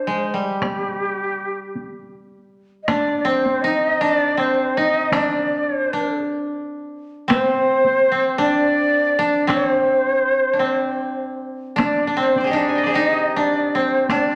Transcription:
0.00 1.40 D4 medium
0.00 0.36 C5 medium
0.07 0.40 G#3 medium
0.34 3.43 G3 soft
0.34 2.03 G4 medium
0.62 taiko rim medium
0.62 taiko high medium
1.75 taiko high soft
2.83 2.90 D#5 medium
2.88 3.70 D4 medium
2.88 3.18 D5 medium
2.88 taiko rim medium
2.88 taiko high medium
3.19 3.27 D5 medium
3.25 4.37 C4 medium
3.25 3.63 C5 medium
3.45 taiko high soft
3.61 4.07 D#4 medium
3.61 4.03 D#5 medium
4.01 4.83 D4 medium
4.01 4.41 D5 medium
4.37 6.97 C4 medium
4.37 4.79 C5 medium
4.77 5.19 D#4 medium
4.77 5.13 D#5 medium
5.12 5.93 D4 medium
5.12 5.68 D5 medium
5.12 taiko rim medium
5.12 taiko high medium
5.68 5.81 C#5 medium
5.81 6.19 C5 medium
5.93 8.36 D4 medium
7.28 8.11 C4 medium
7.28 8.35 C5 loud
7.28 taiko rim medium
7.28 taiko high medium
7.84 taiko high soft
8.12 9.47 C4 medium
8.38 9.18 D4 medium
8.38 9.45 D5 loud
9.19 10.53 D4 medium
9.47 10.59 C4 medium
9.47 taiko rim medium
9.47 taiko high medium
9.52 11.18 C5 medium
10.53 11.76 D4 soft
10.59 12.16 C4 medium
11.76 12.07 D4 medium
11.76 taiko rim medium
11.76 taiko high medium
11.81 12.16 D5 medium
12.07 12.53 D4 soft
12.17 13.74 C4 medium
12.17 12.47 C5 medium
12.35 12.57 D5 soft
12.35 taiko high soft
12.41 12.81 G#4 soft
12.41 12.86 C5 soft
12.47 12.75 G4 soft
12.47 12.58 D#5 medium
12.51 13.01 D4 medium
12.51 12.90 D#4 soft
12.57 12.95 D5 medium
12.69 13.00 G#5 soft
12.75 13.42 D#5 soft
12.75 12.93 G5 soft
12.84 14.35 G#4 soft
12.84 14.35 C5 soft
12.84 13.01 D5 soft
12.94 13.42 D#4 medium
12.94 14.35 G4 medium
12.94 13.27 D#5 medium
13.27 13.38 D#5 medium
13.36 14.10 D4 medium
13.36 13.77 D5 medium
13.75 14.35 C4 medium
13.75 14.10 C5 medium
14.10 14.35 D4 medium
14.10 14.35 D5 medium
14.10 taiko rim medium
14.10 taiko high medium

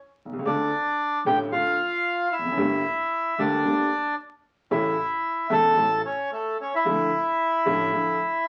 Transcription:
0.25 0.31 B1 soft
0.25 0.32 B1 soft
0.32 0.38 C2 soft
0.32 0.39 C2 medium
0.38 0.45 C#2 medium
0.45 0.68 D2 medium
0.45 0.68 D3 medium
0.45 0.68 A3 medium
0.45 0.68 C4 medium
0.45 1.22 D4 medium
0.45 0.68 F4 medium
0.45 1.22 D5 medium
1.25 1.48 A1 medium
1.25 1.49 A2 medium
1.25 1.48 D3 medium
1.25 1.48 A3 medium
1.25 1.49 C4 medium
1.25 1.49 F4 medium
1.25 1.38 G4 medium
1.25 1.38 G5 medium
1.52 1.75 D2 soft
1.52 1.75 D2 medium
1.52 1.75 D3 soft
1.52 1.75 A3 soft
1.52 1.75 C4 soft
1.52 2.28 F4 medium
1.52 1.75 F4 soft
1.52 2.35 F5 medium
2.32 3.35 E4 medium
2.32 3.42 E5 medium
2.39 2.45 E1 soft
2.39 2.46 E2 soft
2.45 2.51 F1 soft
2.45 2.52 F2 medium
2.51 2.57 F#1 medium
2.51 2.59 F#2 medium
2.57 2.81 G1 medium
2.57 2.81 G2 medium
2.57 2.81 D3 medium
2.57 2.81 G3 medium
2.57 2.81 A#3 medium
2.57 2.81 G4 medium
3.38 3.61 D2 medium
3.38 3.62 D2 medium
3.38 3.62 D3 medium
3.38 3.61 G3 medium
3.38 3.62 A#3 medium
3.38 4.15 D4 medium
3.38 3.62 G4 medium
3.38 4.15 D5 medium
3.65 3.88 G1 soft
3.65 3.88 G1 medium
3.65 3.88 G2 medium
3.65 3.88 D3 soft
3.65 3.88 G3 soft
3.65 3.88 A#3 soft
3.65 3.88 G4 soft
4.71 4.94 A1 medium
4.71 4.94 A2 medium
4.71 4.94 C#3 medium
4.71 4.94 E3 medium
4.71 4.94 A3 medium
4.71 5.47 E4 medium
4.71 4.94 E4 medium
4.71 5.54 E5 medium
5.50 5.73 E1 medium
5.50 5.74 E1 medium
5.50 5.73 E2 medium
5.50 5.73 C#3 medium
5.50 5.73 E3 medium
5.50 5.73 A3 medium
5.50 5.73 E4 medium
5.50 6.01 A4 medium
5.50 6.02 A5 loud
5.77 6.00 A1 soft
5.77 6.01 A1 medium
5.77 6.00 A2 medium
5.77 6.00 C#3 soft
5.77 6.00 E3 soft
5.77 6.00 A3 soft
5.77 6.00 E4 medium
6.05 6.30 C#4 medium
6.05 6.31 C#5 medium
6.32 6.57 A3 medium
6.32 6.58 A4 medium
6.61 6.72 C#4 medium
6.61 6.74 C#5 medium
6.75 8.44 E4 medium
6.75 8.45 E5 medium
6.85 7.08 D2 medium
6.85 7.09 D2 medium
6.85 7.08 D3 medium
6.85 7.08 F3 medium
6.85 7.08 A3 medium
6.85 7.08 E4 medium
7.65 7.89 A1 medium
7.65 7.89 A2 medium
7.65 7.88 D3 medium
7.65 7.89 F3 medium
7.65 7.89 A3 medium
7.65 7.89 E4 medium
7.93 8.16 D2 medium
7.93 8.16 D2 soft
7.93 8.16 D3 soft
7.93 8.16 F3 soft
7.93 8.16 A3 soft
7.93 8.16 E4 soft

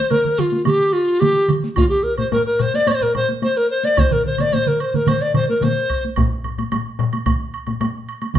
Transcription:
0.00 0.12 C5 medium
0.10 0.41 A#4 medium
0.10 taiko mid medium
0.10 taiko high medium
0.10 high woodblock soft
0.25 taiko mid medium
0.38 0.65 F4 medium
0.38 taiko mid loud
0.38 high woodblock soft
0.52 taiko high medium
0.65 0.94 G4 medium
0.65 taiko mid loud
0.65 taiko high medium
0.65 high woodblock soft
0.93 1.21 F4 medium
0.93 high woodblock soft
1.20 1.53 G4 medium
1.20 taiko mid loud
1.20 taiko high medium
1.20 high woodblock soft
1.48 taiko mid loud
1.48 high woodblock soft
1.64 taiko high medium
1.76 1.89 F4 medium
1.76 taiko loud
1.76 taiko low-mid medium
1.76 taiko high medium
1.76 high woodblock soft
1.89 2.05 G4 medium
2.03 2.17 A#4 medium
2.17 2.30 C5 medium
2.17 taiko low-mid medium
2.17 taiko high medium
2.17 high woodblock soft
2.32 2.45 A#4 medium
2.32 taiko low-mid loud
2.32 taiko high medium
2.32 high woodblock soft
2.46 2.63 A#4 medium
2.59 2.77 C5 medium
2.59 taiko low-mid loud
2.59 high woodblock soft
2.74 2.89 D5 medium
2.74 taiko high medium
2.87 2.93 C5 medium
2.87 taiko low-mid medium
2.87 taiko high medium
2.87 high woodblock medium
2.91 3.04 C5 medium
2.91 2.96 D5 medium
3.01 3.15 A#4 medium
3.01 taiko low-mid medium
3.15 3.28 C5 medium
3.15 taiko low-mid loud
3.15 high woodblock soft
3.29 taiko high soft
3.42 3.58 C5 medium
3.42 taiko high medium
3.42 high woodblock soft
3.57 3.70 A#4 medium
3.70 3.86 C5 medium
3.84 4.01 D5 medium
3.84 taiko high soft
3.97 4.14 C5 medium
3.97 taiko loud
3.97 taiko low-mid medium
3.97 taiko mid medium
3.97 taiko high medium
3.97 high woodblock medium
4.11 4.25 A#4 medium
4.11 taiko low-mid medium
4.11 taiko mid medium
4.24 4.42 C5 medium
4.24 taiko low-mid medium
4.24 taiko mid medium
4.38 4.55 D5 medium
4.38 taiko low-mid medium
4.38 taiko mid medium
4.38 taiko high soft
4.38 high woodblock soft
4.52 4.69 C5 medium
4.52 taiko low-mid medium
4.52 taiko mid medium
4.52 taiko high medium
4.52 high woodblock soft
4.66 4.82 A#4 medium
4.66 taiko low-mid medium
4.66 taiko mid medium
4.80 4.97 C5 medium
4.80 high woodblock soft
4.94 5.10 A#4 medium
4.94 taiko low-mid medium
4.94 taiko mid medium
4.94 taiko high medium
5.07 5.23 C5 medium
5.07 taiko low-mid medium
5.07 taiko mid loud
5.07 taiko high medium
5.07 high woodblock medium
5.21 5.35 D5 medium
5.34 5.48 C5 medium
5.34 taiko low-mid medium
5.34 taiko mid medium
5.34 high woodblock soft
5.49 5.65 A#4 medium
5.49 taiko high medium
5.61 6.04 C5 medium
5.61 taiko low-mid loud
5.61 taiko mid loud
5.61 taiko high medium
5.61 high woodblock soft
5.90 taiko medium
5.90 high woodblock soft
6.05 taiko high soft
6.16 taiko loud
6.16 taiko low-mid loud
6.16 taiko high medium
6.16 high woodblock medium
6.44 taiko low-mid medium
6.44 high woodblock soft
6.58 taiko low-mid medium
6.58 taiko high medium
6.58 high woodblock soft
6.72 taiko low-mid medium
6.72 taiko high medium
6.72 high woodblock medium
6.99 taiko low-mid loud
6.99 high woodblock soft
7.13 taiko high medium
7.13 high woodblock soft
7.26 taiko medium
7.26 taiko low-mid medium
7.26 taiko high medium
7.26 high woodblock medium
7.54 high woodblock soft
7.67 taiko low-mid medium
7.67 taiko high medium
7.67 high woodblock soft
7.81 taiko low-mid medium
7.81 taiko high medium
7.81 high woodblock soft
8.09 high woodblock soft
8.22 taiko high soft
8.22 high woodblock soft
8.35 taiko loud
8.35 taiko mid medium
8.35 taiko high medium
8.35 high woodblock soft

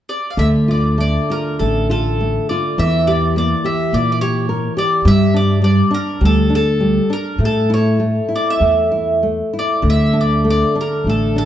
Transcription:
0.09 0.31 D5 medium
0.30 0.37 F5 soft
0.37 1.16 D2 medium
0.37 2.74 D3 soft
0.37 0.47 E5 medium
0.68 0.97 F4 soft
0.68 0.99 D5 medium
0.98 1.27 A3 soft
0.98 1.31 D5 medium
1.30 1.59 F4 soft
1.30 1.58 A#4 medium
1.59 2.37 A1 medium
1.59 1.88 A3 soft
1.59 1.87 A4 medium
1.90 2.18 F4 soft
1.90 2.49 A4 medium
2.21 2.48 A3 soft
2.49 2.78 F4 soft
2.49 2.79 D5 medium
2.78 3.52 E2 medium
2.78 5.02 E3 medium
2.78 3.08 E5 medium
3.07 3.35 G4 soft
3.07 3.36 D5 medium
3.36 3.63 A#3 soft
3.36 3.66 D5 medium
3.64 3.92 G4 soft
3.64 3.94 E5 medium
3.93 4.66 A#2 medium
3.93 4.20 A#3 soft
3.93 4.11 D5 medium
4.12 4.20 D5 medium
4.21 4.48 G4 soft
4.21 4.78 C#5 medium
4.49 4.76 A#4 soft
4.77 5.04 G4 soft
4.77 5.07 D5 medium
5.05 5.80 G2 loud
5.05 5.60 G3 medium
5.05 5.33 E5 medium
5.34 5.62 D4 medium
5.34 5.63 D5 medium
5.62 5.90 G3 soft
5.62 5.90 D5 medium
5.91 6.19 D4 medium
5.91 6.23 A#4 medium
6.21 6.98 D2 medium
6.21 6.49 G3 medium
6.25 6.53 A4 medium
6.50 6.78 D4 soft
6.55 7.12 A4 medium
6.80 7.08 G3 soft
7.10 7.38 D4 soft
7.10 7.42 A#4 medium
7.38 8.17 A2 medium
7.38 7.98 A3 soft
7.45 7.70 A4 medium
7.70 7.99 E4 soft
7.70 8.28 C#5 medium
8.00 8.29 A3 soft
8.29 8.58 E4 soft
8.36 8.48 D5 medium
8.50 9.58 E5 medium
8.60 9.40 E2 medium
8.60 8.90 A3 soft
8.92 9.21 E4 soft
9.23 9.52 A3 soft
9.53 9.82 E4 soft
9.59 9.87 D5 medium
9.82 10.62 D2 medium
9.82 11.45 D3 soft
9.90 10.18 E5 medium
10.13 10.43 D4 soft
10.21 10.48 D5 medium
10.44 10.74 A3 soft
10.50 10.76 D5 medium
10.75 11.04 D4 soft
10.81 11.08 A#4 medium
11.04 11.45 A1 medium
11.04 11.34 A3 soft
11.09 11.37 A4 medium
11.36 11.45 D4 soft
11.36 11.45 A4 medium

